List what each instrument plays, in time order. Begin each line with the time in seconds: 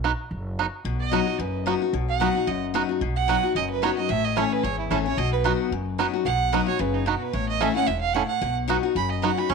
Already playing: upright bass B1
0.04 five-string banjo B3 D#4 F#4
0.31 upright bass F#1
0.59 five-string banjo B3 D#4 F#4
0.85 upright bass B1, steel-string acoustic guitar B2
1.00 fiddle D#5
1.12 steel-string acoustic guitar F#3 B3 D#4 F#4, five-string banjo B3 D#4 F#4
1.27 steel-string acoustic guitar D#4 F#4
1.39 upright bass F#1, steel-string acoustic guitar F#2, fiddle B4
1.66 steel-string acoustic guitar F#3 B3 D#4 F#4, five-string banjo B3 D#4 F#4
1.82 steel-string acoustic guitar D#4 F#4
1.93 upright bass B1, steel-string acoustic guitar B2
2.09 fiddle F#5
2.20 steel-string acoustic guitar F#3 B3 D#4 F#4, five-string banjo B3 D#4 F#4
2.35 steel-string acoustic guitar D#4 F#4
2.47 upright bass F#1, steel-string acoustic guitar F#2, fiddle D#5
2.74 steel-string acoustic guitar F#3 B3 D#4 F#4, five-string banjo B3 D#4 F#4
2.89 steel-string acoustic guitar D#4 F#4
3.01 upright bass B1, steel-string acoustic guitar B2
3.16 fiddle F#5
3.28 steel-string acoustic guitar F#3 B3 D#4 F#4, five-string banjo B3 D#4 F#4
3.43 steel-string acoustic guitar D#4 F#4
3.55 upright bass F#1, steel-string acoustic guitar F#2, fiddle D#5
3.70 fiddle B4
3.82 steel-string acoustic guitar F#3 B3 D#4 F#4, five-string banjo B3 D#4 F#4, fiddle C#5
3.97 steel-string acoustic guitar D#4 F#4, fiddle D#5
4.09 upright bass A1, steel-string acoustic guitar A2, fiddle E5
4.25 fiddle D#5
4.36 steel-string acoustic guitar E3 A3 C#4 E4, five-string banjo C#4 E4 A4, fiddle C#5
4.52 fiddle B4
4.63 upright bass G#1, steel-string acoustic guitar E2, fiddle C#5
4.79 fiddle E4
4.90 upright bass A1, steel-string acoustic guitar E3 A3 C#4 E4, five-string banjo C#4 E4 A4, fiddle A4
5.05 steel-string acoustic guitar C#4 E4, fiddle C#5
5.17 upright bass B1, steel-string acoustic guitar B2, fiddle D#5
5.32 fiddle B4
5.44 steel-string acoustic guitar F#3 B3 D#4 F#4, five-string banjo B3 D#4 F#4
5.71 upright bass F#1, steel-string acoustic guitar F#2
5.98 steel-string acoustic guitar F#3 B3 D#4 F#4, five-string banjo B3 D#4 F#4
6.14 steel-string acoustic guitar D#4 F#4
6.25 upright bass B1, steel-string acoustic guitar B2, fiddle F#5
6.52 steel-string acoustic guitar F#3 B3 D#4 F#4, five-string banjo B3 D#4 F#4
6.67 steel-string acoustic guitar D#4 F#4, fiddle C#5
6.79 upright bass F#1, steel-string acoustic guitar C#3, fiddle B4
6.94 fiddle D#4
7.06 steel-string acoustic guitar B2, five-string banjo B3 D#4 F#4, fiddle F#4
7.22 fiddle B4
7.33 upright bass A1, steel-string acoustic guitar A2, fiddle C#5
7.49 fiddle D#5
7.60 steel-string acoustic guitar E3 A3 C#4 E4, five-string banjo C#4 E4 A4, fiddle E5
7.75 steel-string acoustic guitar C#4 E4, fiddle F#5
7.87 upright bass E1, steel-string acoustic guitar G#2, fiddle E5
8.01 fiddle F5
8.13 steel-string acoustic guitar A2, five-string banjo C#4 E4 A4, fiddle F#5
8.28 fiddle F#5
8.41 upright bass B1, steel-string acoustic guitar B2
8.68 steel-string acoustic guitar F#3 B3 D#4 F#4, five-string banjo B3 D#4 F#4
8.83 steel-string acoustic guitar D#4 F#4
8.95 upright bass F#1, steel-string acoustic guitar F#2, fiddle B5
9.11 fiddle D#5
9.22 steel-string acoustic guitar F#3 B3 D#4 F#4, five-string banjo B3 D#4 F#4, fiddle F#5
9.37 steel-string acoustic guitar D#4 F#4, fiddle B5
9.49 upright bass A1, steel-string acoustic guitar A2, five-string banjo C#4, fiddle C#6